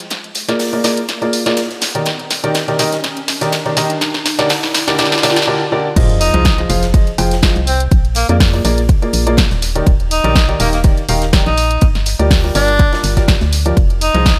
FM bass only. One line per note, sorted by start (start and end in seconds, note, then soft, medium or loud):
5.96 6.30 F1 loud
6.34 6.66 C2 loud
6.70 7.03 F1 loud
7.18 7.52 F1 medium
7.56 7.88 C2 medium
7.92 8.25 A#1 loud
8.29 8.61 F2 loud
8.65 8.98 A#1 loud
9.13 9.47 A#1 medium
9.51 9.83 D#1 medium
9.87 10.20 D#1 loud
10.24 10.56 A#1 loud
10.60 10.93 D#1 loud
11.09 11.42 D#1 medium
11.46 11.78 A#1 loud
11.82 12.15 G1 loud
12.19 12.52 D2 loud
12.55 12.88 G1 loud
13.04 13.37 G1 medium
13.41 13.73 D2 medium
13.77 14.10 F1 loud
14.14 14.39 C2 loud